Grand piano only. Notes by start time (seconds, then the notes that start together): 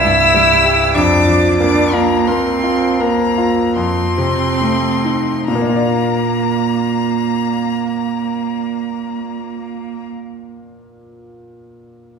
Already playing: C2
0.04 G2
0.34 G3
0.64 G4
0.96 F2
1.27 F3
1.60 A#3
1.93 F4
2.28 A#4
2.63 F4
3.00 A#4
3.38 F4
3.77 F2
4.18 C3
4.61 A3
5.05 D#4
5.48 A#2
5.55 A#3
5.62 D4
5.69 F4
5.76 D5